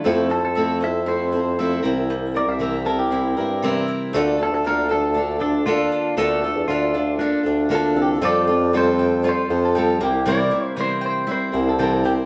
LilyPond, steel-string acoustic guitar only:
\new Staff \with { instrumentName = "Steel-string acoustic guitar" } { \time 4/4 \key f \major \tempo 4 = 118 <f a c' e' a'>8 <c' e' a'>8 <f a c' e' a'>8 <c' e' a'>8 <a c' e' a'>8 <c' e' a'>8 <f a c' e' a'>8 <c e g c' e' bes'>8~ | <c e g c' e' bes'>8 <g c' e' bes'>8 <c e g c' e' bes'>8 <g c' e' bes'>8 <g c' e' bes'>8 <g c' e' bes'>8 <c e g c' e' bes'>4 | <d bes d' f' a'>8 <d' f' a'>8 <d bes d' f' a'>8 <d' f' a'>8 <bes d' f' a'>8 <d' f' a'>8 <d bes d' f' a'>4 | <d bes d' f' a'>8 <d' f' a'>8 <d bes d' f' a'>8 <d' f' a'>8 <bes d' f' a'>8 <d' f' a'>8 <d bes d' f' a'>4 |
<f g c' f' a'>8 <c' f' a'>8 <f g c' f' a'>4 <g c' f' a'>8 <c' f' a'>8 <f g c' f' a'>8 <g c' e' bes'>8 | <c e g c' e' bes'>8 <g c' e' bes'>8 <c e g c' e' bes'>4 <g c' e' bes'>8 <g c' e' bes'>8 <c e g c' e' bes'>8 <g c' e' bes'>8 | }